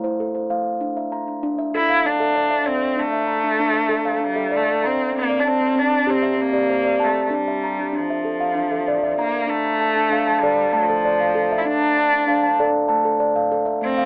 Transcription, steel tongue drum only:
0.00 0.49 A3 medium
0.00 0.35 E4 medium
0.00 0.33 C5 medium
0.20 0.66 A4 medium
0.35 0.81 C5 soft
0.50 0.81 A3 medium
0.50 0.97 F5 soft
0.81 1.26 D4 medium
0.97 1.43 E5 soft
1.12 1.59 A#5 soft
1.27 1.42 D4 medium
1.43 1.96 D4 medium
1.58 2.05 E5 medium
1.74 2.05 A4 medium
1.90 2.36 F5 medium
2.05 2.65 D4 medium
2.20 2.51 A4 medium
2.20 2.49 E5 medium
2.36 2.82 D5 medium
2.50 2.97 E5 medium
2.66 2.96 D4 medium
2.97 3.28 D4 medium
3.12 3.59 E5 soft
3.27 3.75 A#5 soft
3.44 3.59 D4 medium
3.60 4.13 D4 loud
3.74 4.21 E5 soft
3.89 4.21 A4 medium
4.05 4.52 F5 medium
4.20 4.83 D4 medium
4.36 4.68 A4 medium
4.36 4.66 E5 medium
4.51 4.99 D5 medium
4.67 5.14 E5 soft
4.84 5.15 D4 medium
4.84 5.30 A#5 medium
5.13 5.59 C4 medium
5.29 5.76 D5 soft
5.45 5.92 A5 medium
5.61 5.74 C4 medium
5.75 6.29 C4 medium
5.92 6.39 D5 medium
6.07 6.38 G4 medium
6.23 6.69 E5 medium
6.37 6.99 C4 medium
6.53 6.85 G4 medium
6.53 6.84 D5 medium
6.70 7.16 C5 medium
6.85 7.32 D5 soft
7.00 7.32 C4 medium
7.00 7.47 A5 medium
7.30 7.78 D4 medium
7.48 7.94 E5 soft
7.64 8.10 A#5 medium
7.79 7.91 D4 medium
7.93 8.46 D4 medium
8.10 8.56 E5 medium
8.24 8.56 A4 medium
8.40 8.87 F5 medium
8.55 9.17 D4 medium
8.72 9.02 A4 medium
8.72 9.02 E5 soft
8.88 9.34 D5 medium
9.03 9.49 E5 medium
9.19 9.46 D4 medium
9.19 9.64 A#5 medium
9.47 9.49 D4 medium
9.47 9.80 D4 medium
9.65 10.11 A#5 soft
9.81 10.26 A5 medium
9.96 10.09 D4 medium
10.10 10.63 D4 medium
10.10 10.58 F5 medium
10.27 10.72 A5 medium
10.43 10.73 A4 medium
10.43 10.89 D5 medium
10.73 11.52 A3 medium
10.73 11.19 A5 medium
10.89 11.20 A4 medium
11.05 11.51 D5 medium
11.20 11.66 F5 soft
11.35 11.66 A4 medium
11.52 11.97 E5 medium
11.65 11.92 D4 medium
11.82 12.28 A#5 soft
11.97 12.42 A5 medium
12.13 12.26 D4 medium
12.27 12.80 D4 medium
12.27 12.74 F5 medium
12.43 12.87 A5 medium
12.60 12.90 A4 medium
12.60 13.05 D5 medium
12.89 13.68 A3 medium
12.89 13.35 A5 medium
13.05 13.36 A4 medium
13.20 13.66 D5 medium
13.36 13.82 F5 medium
13.52 13.82 A4 medium
13.66 13.97 E5 medium
13.81 14.05 A3 medium
13.98 14.05 F5 medium

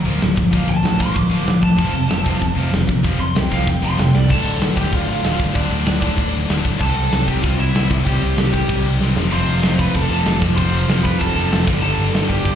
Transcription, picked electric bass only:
0.05 0.20 D1 loud
0.21 0.35 D1 medium
0.37 0.51 G1 medium
0.53 0.67 D1 medium
0.68 0.82 D1 medium
0.84 1.12 A1 medium
1.16 1.29 D1 medium
1.30 1.45 D1 medium
1.46 1.60 D1 medium
1.63 1.77 A1 medium
1.79 1.93 F1 loud
1.93 2.08 F1 medium
2.10 2.24 F1 loud
2.26 2.40 F1 medium
2.42 2.55 F1 loud
2.56 2.71 F1 loud
2.72 2.86 F1 medium
2.89 3.03 A#1 medium
3.04 3.18 F1 loud
3.19 3.33 F1 medium
3.35 3.63 C2 loud
3.67 3.81 F1 loud
3.82 3.96 F1 medium
3.98 4.12 F1 medium
4.13 4.28 C2 medium
4.30 4.42 D1 medium
4.45 4.57 D1 medium
4.60 4.85 D1 medium
4.93 5.05 D1 loud
5.08 5.20 D1 loud
5.24 5.36 D1 medium
5.39 5.51 D1 medium
5.55 5.67 D1 medium
5.70 5.82 D1 medium
5.85 6.10 D1 medium
6.18 6.30 D1 loud
6.32 6.45 D1 loud
6.48 6.61 D1 medium
6.65 6.77 D1 medium
6.81 6.93 C2 loud
6.96 7.08 C2 medium
7.12 7.36 C2 loud
7.43 7.55 C2 loud
7.59 7.71 C2 loud
7.75 7.87 C2 loud
7.91 8.03 C2 medium
8.06 8.18 C2 loud
8.21 8.34 C2 medium
8.37 8.61 C2 loud
8.70 8.81 C2 medium
8.84 8.96 C2 loud
8.99 9.12 C2 medium
9.16 9.28 F1 medium
9.32 9.44 F1 loud
9.47 9.59 F1 medium
9.63 9.87 F1 loud
9.95 10.07 F1 loud
10.10 10.22 F1 loud
10.26 10.38 F1 loud
10.42 10.54 F1 medium
10.57 10.69 F1 loud
10.73 10.85 F1 medium
10.88 11.13 F1 loud
11.21 11.33 F1 loud
11.35 11.48 F1 loud
11.51 11.64 F1 medium
11.67 11.79 G1 medium
11.82 11.94 G1 loud
11.98 12.10 G1 medium
12.13 12.38 G1 medium
12.45 12.55 G1 loud

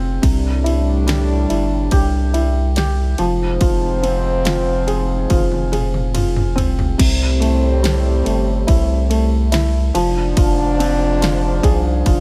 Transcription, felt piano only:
0.00 0.21 C4 medium
0.00 0.25 F4 medium
0.00 0.24 G#4 medium
0.22 3.14 C3 medium
0.64 1.48 E4 medium
1.07 2.72 G3 medium
1.49 2.32 E4 medium
1.91 2.75 G4 medium
2.34 3.16 E4 medium
2.77 3.18 G4 medium
3.18 6.53 F3 medium
3.61 4.44 F4 medium
4.03 5.68 C4 medium
4.45 5.28 F4 medium
4.87 5.70 G#4 medium
5.30 6.13 F4 medium
5.72 6.95 G#4 medium
6.14 6.96 F4 medium
6.55 6.97 C4 medium
6.98 9.90 C3 medium
7.40 8.23 A3 medium
7.83 9.48 G3 medium
8.24 9.08 A3 medium
8.67 9.50 E4 medium
9.10 9.92 A3 medium
9.52 9.93 E4 medium
9.94 12.20 F3 medium
10.38 11.20 F4 medium
10.79 12.20 C4 medium
11.22 12.05 F4 medium
11.63 12.20 G#4 medium
12.06 12.20 F4 medium

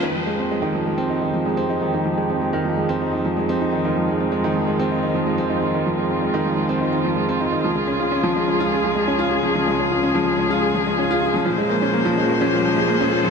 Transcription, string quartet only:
0.04 7.62 F2 medium
0.04 7.62 F3 medium
0.04 11.42 G#3 medium
0.04 7.62 D#4 medium
0.04 3.81 G4 medium
3.84 11.42 F4 medium
7.65 11.42 C#2 medium
7.65 11.43 C#3 medium
7.65 11.42 G#4 medium
11.45 13.30 A#2 medium
11.45 13.30 F3 medium
11.45 13.30 G#3 medium
11.45 13.30 C#4 medium
11.45 13.30 C5 medium

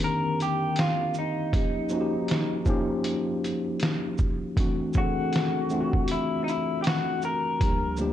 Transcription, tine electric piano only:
0.00 1.55 D3 medium
0.00 1.56 D#3 medium
0.00 1.53 A#3 medium
0.00 1.55 C4 medium
0.00 1.56 D4 medium
0.00 1.55 G4 medium
0.00 1.56 A#4 medium
1.52 1.88 F3 medium
1.52 1.88 A#3 medium
1.52 1.89 C#4 medium
1.52 1.90 D#4 medium
1.52 1.90 G4 medium
1.90 2.61 F3 medium
1.90 2.62 A#3 medium
1.90 2.62 C#4 medium
1.90 2.63 D#4 medium
1.90 2.01 F#4 medium
2.01 2.66 G4 medium
2.66 4.07 F3 medium
2.66 4.08 A#3 medium
2.66 4.08 C#4 medium
2.66 4.09 D#4 medium
2.70 4.09 G4 loud
4.56 4.92 E3 medium
4.56 4.92 A3 medium
4.56 4.93 C4 medium
4.56 4.93 D4 medium
4.60 4.94 F#4 medium
4.94 5.65 E3 medium
4.94 5.66 A3 medium
4.94 5.66 C4 medium
4.94 5.67 D4 medium
4.94 5.05 G#4 medium
5.04 5.70 A4 medium
5.70 7.11 E3 medium
5.70 7.12 A3 medium
5.70 7.12 C4 medium
5.70 7.13 D4 medium
5.70 5.81 F4 medium
5.80 7.17 F#4 medium
7.60 7.96 D2 medium
7.60 7.96 F3 medium
7.60 7.96 G3 medium
7.60 7.97 A#3 medium
7.60 7.97 D4 medium
7.60 7.98 G4 medium
7.97 8.13 D2 medium
7.97 8.13 F3 medium
7.97 8.13 G3 medium
7.97 8.13 A#3 medium
7.97 8.13 D4 medium
8.02 8.13 G4 medium

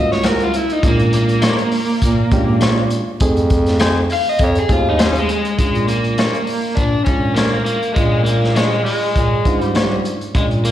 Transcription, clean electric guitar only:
0.23 0.43 G3 medium
0.23 0.43 C#4 medium
0.23 0.43 F#4 medium
0.23 0.43 A#4 medium
1.42 1.61 G#3 loud
1.42 1.62 D4 medium
1.42 1.62 F4 loud
1.42 1.62 C#5 loud
2.61 2.80 G#3 medium
2.61 2.81 D4 medium
2.61 2.81 F4 medium
2.61 2.81 C#5 medium
3.80 3.99 A3 loud
3.80 3.99 D#4 loud
3.80 3.99 G#4 loud
3.80 4.00 C5 loud
4.99 5.18 A3 medium
4.99 5.18 D#4 medium
4.99 5.18 G#4 medium
4.99 5.18 C5 medium
6.19 6.37 G#3 medium
6.19 6.37 D4 medium
6.19 6.38 F4 medium
6.19 6.38 C#5 medium
7.37 7.56 G#3 medium
7.37 7.56 D4 medium
7.37 7.56 F4 medium
7.37 7.57 C#5 medium
8.56 8.75 G#3 medium
8.56 8.75 D4 medium
8.56 8.75 F4 medium
8.56 8.76 C#5 medium
9.75 9.94 G#3 medium
9.75 9.94 D4 medium
9.75 9.95 F4 medium
9.75 9.95 C#5 medium

